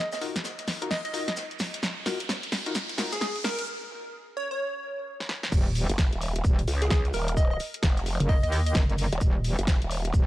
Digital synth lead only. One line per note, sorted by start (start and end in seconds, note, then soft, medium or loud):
0.13 0.18 D#5 medium
0.91 1.00 D#5 medium
1.05 1.11 D#5 medium
1.13 1.23 D#5 medium
1.28 1.34 D#5 medium
3.12 3.18 G#4 medium
3.21 3.30 G#4 medium
3.44 3.66 A#4 medium
4.37 4.48 C#5 loud
4.51 5.15 C#5 loud
6.82 6.87 G#4 medium
6.91 7.00 G#4 medium
7.14 7.35 A#4 loud
7.37 7.46 D#5 medium
7.51 7.57 D#5 medium
8.29 8.38 D#5 medium
8.43 8.49 D#5 medium
8.52 8.61 D#5 medium
8.66 8.72 D#5 medium